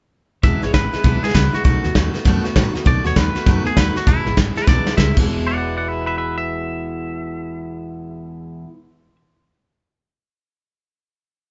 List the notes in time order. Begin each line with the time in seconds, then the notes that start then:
0.43 E1 E2 B2 E3 G#3 B3 E4 E5, kick, snare
0.62 G#1 E3 G#3 B3 E4 C#5, snare
0.73 G#1 E3 G#3 B3 E4 B4, kick, snare, hi-hat pedal
0.93 E3 G#3 B3 E4, muted fretless electric bass stroke, snare
1.04 B1 E2 B2 E3 G#3 B3 E4, kick, snare
1.23 E3 G#3 B3 E4 G#4, muted fretless electric bass stroke, snare
1.29 snare
1.34 C#2 E3 G#3 B3 E4 B4, kick, snare, hi-hat pedal
1.53 E3 G#3 B3 E4 F#4, snare
1.64 B1 B2 D#3 A3 B3 F#4, kick, snare
1.84 D#2 A3 B3 F#4, snare
1.95 D#2 D#3 A3 B3 F#4, kick, snare, hi-hat pedal
2.14 A3 B3 F#4, muted fretless electric bass stroke, snare
2.25 F#2 B2 D#3 A3 B3 F#4, kick, snare
2.44 A3 B3 F#4, muted fretless electric bass stroke, snare
2.55 A2 D#3 A3 B3 F#4, kick, snare, hi-hat pedal
2.74 A3 B3 F#4, muted fretless electric bass stroke, snare
2.85 B1 B2 D#3 A3 B3 F#4 D5, kick, snare
3.04 D#2 A3 B3 F#4 C#5, snare
3.15 D#2 D#3 A3 B3 F#4 B4, kick, snare, hi-hat pedal
3.35 A3 B3 F#4, muted fretless electric bass stroke, snare
3.46 F#2 B2 D#3 A3 B3 F#4, kick, snare
3.65 A3 B3 F#4 G#4, muted fretless electric bass stroke, snare
3.76 D#2 D#3 A3 B3 F#4 B4, kick, snare, hi-hat pedal
3.96 A3 B3 F#4, muted fretless electric bass stroke, snare
4.07 E1 E2 B2 E3 G#3 B3 E4, kick, snare
4.26 G#1 E3 G#3 B3 E4, snare
4.36 G#1 E3 G#3 B3 E4, kick, snare, hi-hat pedal
4.55 E3 G#3 B3 E4 B4, snare
4.66 B1 E2 B2 E3 G#3 B3 E4 D5, kick, snare
4.86 E3 G#3 B3 E4, muted fretless electric bass stroke, snare
4.97 C#2 E3 G#3 B3 E4 E5, kick, snare, hi-hat pedal
5.15 E1 E2 B2 E3, kick, crash
5.20 G#3 B3 E4
5.47 D5 F#5
5.57 D5 F#5
5.77 D5 F#5
5.88 B4 E5
6.06 B4 E5
6.18 B4 E5
6.38 E5